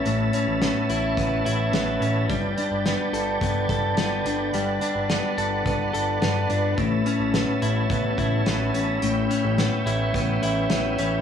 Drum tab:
HH |xxxxxxxx|xxxxxxxx|xxxxxxxx|xxxxxxxx|
SD |--o---o-|--o---o-|--o---o-|--o---o-|
BD |----o---|o---oo--|----o---|o---oo--|

HH |xxxxxxxx|
SD |--o---o-|
BD |----o---|